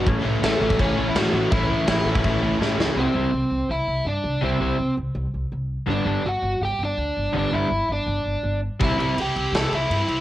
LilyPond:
<<
  \new Staff \with { instrumentName = "Overdriven electric guitar" } { \time 4/4 \key c \lydian \tempo 4 = 165 r4 <a a'>4 <cis' cis''>8. <e' e''>16 <fis' fis''>4 | <e' e''>2. r4 | <c' c''>2 <e' e''>4 <d' d''>4 | <c' c''>4. r2 r8 |
<d' d''>4 <fis' fis''>4 <g' g''>8 <d' d''>4. | <d' d''>8 <e' e''>4 <d' d''>2 r8 | <e' e''>4 <g' g''>4 <a' a''>8 <e' e''>4. | }
  \new Staff \with { instrumentName = "Distorted electric guitar" } { \time 4/4 \key c \lydian <a, e a cis' e'>2~ <a, e a cis' e'>8 <a, e a cis' e'>8 <a, e a cis' e'>4 | <a, e a cis' e'>2~ <a, e a cis' e'>8 <a, e a cis' e'>8 <a, e a cis' e'>4 | r1 | r1 |
r1 | r1 | <c g c' e'>8 <c g c' e'>8 <c g c' e'>8 <c g c' e'>8 <c g c' e'>8 <c g c' e'>8 <c g c' e'>8 <c g c' e'>8 | }
  \new Staff \with { instrumentName = "Overdriven electric guitar" } { \time 4/4 \key c \lydian <a, e a cis' e'>8 <a, e a cis' e'>8 <a, e a cis' e'>8 <a, e a cis' e'>8 <a, e a cis' e'>8 <a, e a cis' e'>8 <a, e a cis' e'>8 <a, e a cis' e'>8 | <a, e a cis' e'>8 <a, e a cis' e'>8 <a, e a cis' e'>8 <a, e a cis' e'>8 <a, e a cis' e'>8 <a, e a cis' e'>8 <a, e a cis' e'>8 <a, e a cis' e'>8 | <c g c' e'>8 <c g c' e'>8 r2. | <c g c' e'>8 <c g c' e'>8 r2. |
<g, d g b d'>8 <g, d g b d'>8 r2. | <g, d g b d'>8 <g, d g b d'>8 r2. | <c g c' e'>8 <c g c' e'>8 r2. | }
  \new Staff \with { instrumentName = "Distorted electric guitar" } { \clef bass \time 4/4 \key c \lydian <a, e a>8 <a, e a>8 <a, e a>8 <a, e a>8 <a, e a>8 <a, e a>8 <a, e a>8 <a, e a>8 | <a, e a>8 <a, e a>8 <a, e a>8 <a, e a>8 <a, e a>8 <a, e a>8 <a, e a>8 <a, e a>8 | <c g c'>8 <c g c'>8 r2. | <c g c'>8 <c g c'>8 r2. |
<g, d g>8 <g, d g>8 r2. | <g, d g>8 <g, d g>8 r2. | <c g c'>8 <c g c'>8 r2. | }
  \new Staff \with { instrumentName = "Upright bass" } { \clef bass \time 4/4 \key c \lydian a,,8 a,,8 a,,8 a,,8 a,,4 a,,8 a,,8 | a,,8 a,,8 a,,8 a,,8 a,,4 a,,8 cis,8 | c,8 c,8 c,8 c,8 c,8 c,8 g,8 c,8 | c,8 c,8 c,8 c,8 c,8 c,8 c,4 |
g,,8 g,,8 g,,8 g,,8 g,,8 g,,8 d,8 g,,8 | g,,8 g,,8 g,,8 g,,8 g,,8 g,,8 g,,4 | c,8 c,8 c,8 c,8 c,8 c,8 g,8 c,8 | }
  \new DrumStaff \with { instrumentName = "Drums" } \drummode { \time 4/4 <cymc bd>4 <cymc sn>8. bd16 <cymc bd>4 <cymc sn>4 | <cymc bd>4 <cymc sn>8. bd16 <cymc bd>4 sn8 sn8 | r4 r4 r4 r4 | r4 r4 r4 r4 |
r4 r4 r4 r4 | r4 r4 r4 r4 | <cymc bd>8 cymc8 cymc8 cymc8 <cymc sn>8 cymc8 cymc8 cymc8 | }
>>